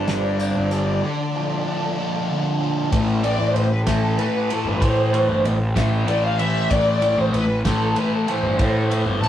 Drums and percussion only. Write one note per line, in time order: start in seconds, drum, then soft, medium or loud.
0.08 snare loud
0.08 closed hi-hat medium
0.25 tambourine soft
0.40 closed hi-hat medium
0.40 tambourine medium
0.71 closed hi-hat medium
2.93 kick loud
2.93 ride medium
3.24 ride medium
3.56 ride medium
3.87 kick medium
3.87 snare loud
3.87 ride medium
4.19 ride medium
4.50 ride medium
4.82 kick loud
4.82 ride medium
5.14 ride medium
5.45 ride medium
5.76 kick medium
5.76 snare loud
5.76 ride medium
6.08 ride medium
6.39 ride medium
6.71 kick loud
6.71 ride loud
7.02 ride medium
7.34 ride medium
7.65 kick medium
7.65 snare loud
7.65 ride medium
7.96 ride medium
8.28 ride medium
8.59 kick loud
8.59 ride medium
8.91 ride medium
9.23 ride medium